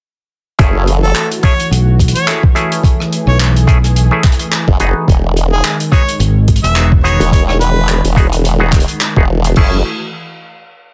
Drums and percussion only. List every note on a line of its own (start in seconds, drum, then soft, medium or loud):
0.59 kick loud
0.59 closed hi-hat medium
0.87 closed hi-hat medium
1.16 clap loud
1.16 closed hi-hat medium
1.32 closed hi-hat medium
1.43 kick loud
1.43 closed hi-hat medium
1.60 closed hi-hat medium
1.73 closed hi-hat medium
1.99 kick medium
1.99 closed hi-hat medium
2.08 closed hi-hat medium
2.16 closed hi-hat medium
2.28 clap loud
2.28 closed hi-hat medium
2.43 kick loud
2.56 cross-stick soft
2.56 closed hi-hat medium
2.72 closed hi-hat medium
2.84 kick loud
2.84 closed hi-hat medium
3.00 cross-stick medium
3.13 closed hi-hat medium
3.40 clap loud
3.40 closed hi-hat medium
3.56 closed hi-hat medium
3.68 kick loud
3.68 closed hi-hat medium
3.84 cross-stick soft
3.84 closed hi-hat medium
3.96 closed hi-hat medium
4.24 kick loud
4.24 clap medium
4.24 closed hi-hat medium
4.32 closed hi-hat medium
4.39 closed hi-hat medium
4.52 clap loud
4.52 closed hi-hat medium
4.68 kick medium
4.80 closed hi-hat soft
5.08 kick loud
5.08 closed hi-hat medium
5.37 closed hi-hat medium
5.64 clap loud
5.64 closed hi-hat medium
5.80 closed hi-hat medium
5.92 kick loud
5.92 closed hi-hat soft
6.09 closed hi-hat medium
6.20 closed hi-hat medium
6.48 kick medium
6.48 closed hi-hat medium
6.56 closed hi-hat medium
6.64 closed hi-hat medium
6.76 clap loud
6.76 closed hi-hat medium
6.92 kick loud
7.05 cross-stick soft
7.05 closed hi-hat medium
7.21 closed hi-hat medium
7.32 kick loud
7.32 closed hi-hat medium
7.49 cross-stick medium
7.61 closed hi-hat medium
7.88 clap loud
7.88 closed hi-hat medium
8.05 closed hi-hat medium
8.16 kick loud
8.16 closed hi-hat medium
8.32 cross-stick soft
8.32 closed hi-hat medium
8.45 closed hi-hat medium
8.72 kick loud
8.72 clap medium
8.72 closed hi-hat medium
8.80 closed hi-hat medium
8.88 closed hi-hat medium
9.00 clap loud
9.00 closed hi-hat medium
9.16 kick medium
9.44 closed hi-hat medium
9.44 closed hi-hat soft
9.56 kick loud
9.56 crash medium